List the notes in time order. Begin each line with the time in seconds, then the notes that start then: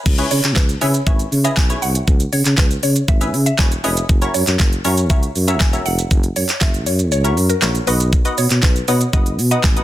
0.06 C#2, kick, crash, shaker
0.18 C#4 E4 G#4 B4 C#5, closed hi-hat, shaker
0.31 C#3 C#5, open hi-hat, shaker
0.44 C#3, clap, closed hi-hat, shaker
0.56 C#2 B4, kick, snare, clap, shaker
0.69 closed hi-hat, shaker
0.81 C#3 C#4 E4 G#4 B4 C#5 E5, open hi-hat, shaker
0.94 closed hi-hat, shaker
1.06 G#1 C#4 E4 G#4 B4 C#5 E5, kick, shaker
1.19 closed hi-hat, shaker
1.32 C#3, open hi-hat, shaker
1.44 C#4 E4 G#4 B4 D#5 E5, closed hi-hat, shaker
1.57 B1 G#5, kick, snare, clap, shaker
1.69 C#4 E4 G#4 B4 C#5, closed hi-hat, shaker
1.82 C2 F#5, open hi-hat, shaker
1.95 closed hi-hat, shaker
2.08 C#2, kick, shaker
2.20 closed hi-hat, shaker
2.33 C#3 C#5, open hi-hat, shaker
2.45 C#3, clap, closed hi-hat, shaker
2.58 C#2 B4, kick, snare, clap, shaker
2.71 closed hi-hat, shaker
2.83 C#3 C#5, open hi-hat, shaker
2.96 closed hi-hat, shaker
3.08 G#1 E5, kick, shaker
3.21 C#4 E4 G#4 B4 E5, closed hi-hat, shaker
3.34 C#3, open hi-hat, shaker
3.46 E5, closed hi-hat, shaker
3.59 E1 C#4 E4 G#4 B4 C#5 G#5, kick, snare, clap, shaker
3.72 closed hi-hat, shaker
3.84 F1 C#4 E4 G#4 B4 C#5 D#5, open hi-hat, shaker
3.97 closed hi-hat, shaker
4.09 F#1, kick, shaker
4.21 C#4 E4 F#4 A#4 C#5, closed hi-hat, shaker
4.34 F#2 C#5, open hi-hat, shaker
4.47 F#2, clap, closed hi-hat, shaker
4.59 F#1 A#4, kick, snare, clap, shaker
4.73 closed hi-hat, shaker
4.85 F#2 C#4 E4 F#4 A#4 C#5, open hi-hat, shaker
4.97 closed hi-hat, shaker
5.10 C#2 C#4 E4 F#4 A#4 C#5 E5, kick, shaker
5.23 closed hi-hat, shaker
5.35 F#2, open hi-hat, shaker
5.47 C#4 E4 F#4 A#4 E5, closed hi-hat, shaker
5.60 E1 G#5, kick, snare, clap, shaker
5.73 C#4 E4 F#4 A#4 E5, closed hi-hat, shaker
5.86 F1 F#5, open hi-hat, shaker
5.99 closed hi-hat, shaker
6.11 F#1, kick, shaker
6.23 closed hi-hat, shaker
6.36 F#2 C#5, open hi-hat, shaker
6.49 clap, closed hi-hat, shaker
6.61 F#1 E5, kick, snare, clap, shaker
6.74 closed hi-hat, shaker
6.86 F#2 C#5, open hi-hat, shaker
6.99 closed hi-hat, shaker
7.12 C#2 C#5, shaker
7.24 C#4 E4 F#4 A#4 C#5, closed hi-hat, shaker
7.37 F#2, open hi-hat, shaker
7.49 A#4, closed hi-hat, shaker
7.62 A#1 C#4 E4 F#4 A#4 C#5, snare, clap, shaker
7.75 closed hi-hat, shaker
7.87 B1 B3 D#4 F#4 B4 D#5, open hi-hat, shaker
8.00 closed hi-hat, shaker
8.13 kick, shaker
8.25 B3 D#4 F#4 B4 D#5, closed hi-hat, shaker
8.38 B2 C#5, open hi-hat, shaker
8.50 B2, clap, closed hi-hat, shaker
8.63 B1 B4, kick, snare, clap, shaker
8.76 closed hi-hat, shaker
8.88 B2 B3 D#4 F#4 B4 C#5 D#5, open hi-hat, shaker
9.01 closed hi-hat, shaker
9.13 F#1 B3 D#4 F#4 B4 D#5, kick, shaker
9.26 closed hi-hat, shaker
9.39 B2, open hi-hat, shaker
9.51 B3 D#4 F#4 B4 D#5, closed hi-hat, shaker
9.64 A1 G#5, kick, snare, clap, shaker
9.76 B3 D#4 F#4 B4 D#5, closed hi-hat, shaker